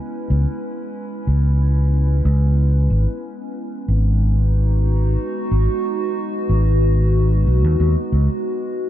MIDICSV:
0, 0, Header, 1, 3, 480
1, 0, Start_track
1, 0, Key_signature, 4, "minor"
1, 0, Tempo, 652174
1, 216, Time_signature, 4, 2, 24, 8
1, 6547, End_track
2, 0, Start_track
2, 0, Title_t, "Ambient pad"
2, 0, Program_c, 0, 92
2, 0, Note_on_c, 0, 56, 65
2, 0, Note_on_c, 0, 59, 68
2, 0, Note_on_c, 0, 61, 84
2, 0, Note_on_c, 0, 64, 86
2, 0, Note_on_c, 0, 71, 77
2, 2128, Note_off_c, 0, 56, 0
2, 2135, Note_off_c, 0, 64, 0
2, 2137, Note_on_c, 0, 56, 84
2, 2707, Note_on_c, 0, 63, 85
2, 2982, Note_on_c, 0, 66, 84
2, 3677, Note_off_c, 0, 61, 0
2, 5977, Note_off_c, 0, 59, 0
2, 5977, Note_off_c, 0, 63, 0
2, 5977, Note_off_c, 0, 71, 0
2, 6547, Note_off_c, 0, 56, 0
2, 6547, Note_off_c, 0, 66, 0
2, 6547, End_track
3, 0, Start_track
3, 0, Title_t, "Fingered electric bass"
3, 0, Program_c, 1, 33
3, 222, Note_on_c, 1, 37, 88
3, 328, Note_off_c, 1, 37, 0
3, 937, Note_on_c, 1, 37, 80
3, 1634, Note_off_c, 1, 37, 0
3, 1656, Note_on_c, 1, 37, 90
3, 2114, Note_off_c, 1, 37, 0
3, 2136, Note_on_c, 1, 32, 90
3, 2245, Note_off_c, 1, 32, 0
3, 2858, Note_on_c, 1, 32, 83
3, 3795, Note_off_c, 1, 32, 0
3, 4058, Note_on_c, 1, 32, 90
3, 4166, Note_off_c, 1, 32, 0
3, 4780, Note_on_c, 1, 32, 83
3, 5476, Note_off_c, 1, 32, 0
3, 5497, Note_on_c, 1, 35, 81
3, 5625, Note_off_c, 1, 35, 0
3, 5625, Note_on_c, 1, 39, 81
3, 5725, Note_off_c, 1, 39, 0
3, 5739, Note_on_c, 1, 39, 97
3, 5846, Note_off_c, 1, 39, 0
3, 5979, Note_on_c, 1, 37, 90
3, 6087, Note_off_c, 1, 37, 0
3, 6547, End_track
0, 0, End_of_file